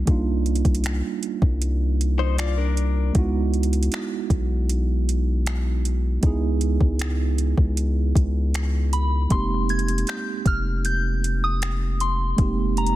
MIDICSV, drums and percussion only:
0, 0, Header, 1, 2, 480
1, 0, Start_track
1, 0, Tempo, 769231
1, 48, Time_signature, 4, 2, 24, 8
1, 8086, End_track
2, 0, Start_track
2, 0, Title_t, "Drums"
2, 45, Note_on_c, 9, 42, 54
2, 46, Note_on_c, 9, 36, 112
2, 108, Note_off_c, 9, 42, 0
2, 109, Note_off_c, 9, 36, 0
2, 286, Note_on_c, 9, 42, 41
2, 346, Note_off_c, 9, 42, 0
2, 346, Note_on_c, 9, 42, 52
2, 405, Note_on_c, 9, 36, 78
2, 406, Note_off_c, 9, 42, 0
2, 406, Note_on_c, 9, 42, 54
2, 466, Note_off_c, 9, 42, 0
2, 466, Note_on_c, 9, 42, 66
2, 468, Note_off_c, 9, 36, 0
2, 523, Note_off_c, 9, 42, 0
2, 523, Note_on_c, 9, 42, 70
2, 536, Note_on_c, 9, 26, 111
2, 585, Note_off_c, 9, 42, 0
2, 598, Note_off_c, 9, 26, 0
2, 765, Note_on_c, 9, 42, 69
2, 828, Note_off_c, 9, 42, 0
2, 886, Note_on_c, 9, 36, 96
2, 948, Note_off_c, 9, 36, 0
2, 1008, Note_on_c, 9, 42, 82
2, 1071, Note_off_c, 9, 42, 0
2, 1254, Note_on_c, 9, 42, 79
2, 1316, Note_off_c, 9, 42, 0
2, 1488, Note_on_c, 9, 42, 64
2, 1493, Note_on_c, 9, 26, 109
2, 1550, Note_off_c, 9, 42, 0
2, 1555, Note_off_c, 9, 26, 0
2, 1730, Note_on_c, 9, 42, 68
2, 1792, Note_off_c, 9, 42, 0
2, 1964, Note_on_c, 9, 42, 56
2, 1966, Note_on_c, 9, 36, 106
2, 2027, Note_off_c, 9, 42, 0
2, 2028, Note_off_c, 9, 36, 0
2, 2206, Note_on_c, 9, 42, 40
2, 2267, Note_off_c, 9, 42, 0
2, 2267, Note_on_c, 9, 42, 50
2, 2327, Note_off_c, 9, 42, 0
2, 2327, Note_on_c, 9, 42, 58
2, 2388, Note_off_c, 9, 42, 0
2, 2388, Note_on_c, 9, 42, 69
2, 2444, Note_off_c, 9, 42, 0
2, 2444, Note_on_c, 9, 42, 70
2, 2457, Note_on_c, 9, 26, 113
2, 2507, Note_off_c, 9, 42, 0
2, 2520, Note_off_c, 9, 26, 0
2, 2684, Note_on_c, 9, 36, 91
2, 2685, Note_on_c, 9, 42, 74
2, 2746, Note_off_c, 9, 36, 0
2, 2748, Note_off_c, 9, 42, 0
2, 2930, Note_on_c, 9, 42, 84
2, 2992, Note_off_c, 9, 42, 0
2, 3175, Note_on_c, 9, 42, 77
2, 3237, Note_off_c, 9, 42, 0
2, 3410, Note_on_c, 9, 42, 63
2, 3415, Note_on_c, 9, 26, 107
2, 3472, Note_off_c, 9, 42, 0
2, 3477, Note_off_c, 9, 26, 0
2, 3652, Note_on_c, 9, 42, 68
2, 3714, Note_off_c, 9, 42, 0
2, 3886, Note_on_c, 9, 42, 55
2, 3887, Note_on_c, 9, 36, 106
2, 3948, Note_off_c, 9, 42, 0
2, 3950, Note_off_c, 9, 36, 0
2, 4124, Note_on_c, 9, 42, 68
2, 4187, Note_off_c, 9, 42, 0
2, 4247, Note_on_c, 9, 36, 76
2, 4309, Note_off_c, 9, 36, 0
2, 4364, Note_on_c, 9, 42, 69
2, 4377, Note_on_c, 9, 26, 118
2, 4426, Note_off_c, 9, 42, 0
2, 4440, Note_off_c, 9, 26, 0
2, 4607, Note_on_c, 9, 42, 68
2, 4670, Note_off_c, 9, 42, 0
2, 4727, Note_on_c, 9, 36, 89
2, 4789, Note_off_c, 9, 36, 0
2, 4850, Note_on_c, 9, 42, 79
2, 4912, Note_off_c, 9, 42, 0
2, 5088, Note_on_c, 9, 36, 86
2, 5096, Note_on_c, 9, 42, 81
2, 5151, Note_off_c, 9, 36, 0
2, 5158, Note_off_c, 9, 42, 0
2, 5331, Note_on_c, 9, 42, 68
2, 5336, Note_on_c, 9, 26, 111
2, 5394, Note_off_c, 9, 42, 0
2, 5398, Note_off_c, 9, 26, 0
2, 5572, Note_on_c, 9, 42, 66
2, 5634, Note_off_c, 9, 42, 0
2, 5806, Note_on_c, 9, 42, 55
2, 5807, Note_on_c, 9, 36, 106
2, 5868, Note_off_c, 9, 42, 0
2, 5870, Note_off_c, 9, 36, 0
2, 6048, Note_on_c, 9, 42, 42
2, 6108, Note_off_c, 9, 42, 0
2, 6108, Note_on_c, 9, 42, 51
2, 6168, Note_off_c, 9, 42, 0
2, 6168, Note_on_c, 9, 42, 57
2, 6228, Note_off_c, 9, 42, 0
2, 6228, Note_on_c, 9, 42, 63
2, 6284, Note_off_c, 9, 42, 0
2, 6284, Note_on_c, 9, 42, 70
2, 6297, Note_on_c, 9, 26, 114
2, 6346, Note_off_c, 9, 42, 0
2, 6360, Note_off_c, 9, 26, 0
2, 6524, Note_on_c, 9, 36, 93
2, 6525, Note_on_c, 9, 42, 70
2, 6586, Note_off_c, 9, 36, 0
2, 6588, Note_off_c, 9, 42, 0
2, 6768, Note_on_c, 9, 42, 84
2, 6831, Note_off_c, 9, 42, 0
2, 7015, Note_on_c, 9, 42, 83
2, 7078, Note_off_c, 9, 42, 0
2, 7251, Note_on_c, 9, 42, 61
2, 7255, Note_on_c, 9, 26, 110
2, 7313, Note_off_c, 9, 42, 0
2, 7318, Note_off_c, 9, 26, 0
2, 7491, Note_on_c, 9, 42, 74
2, 7553, Note_off_c, 9, 42, 0
2, 7726, Note_on_c, 9, 42, 57
2, 7727, Note_on_c, 9, 36, 109
2, 7789, Note_off_c, 9, 42, 0
2, 7790, Note_off_c, 9, 36, 0
2, 7969, Note_on_c, 9, 42, 43
2, 8028, Note_off_c, 9, 42, 0
2, 8028, Note_on_c, 9, 42, 51
2, 8086, Note_off_c, 9, 42, 0
2, 8086, End_track
0, 0, End_of_file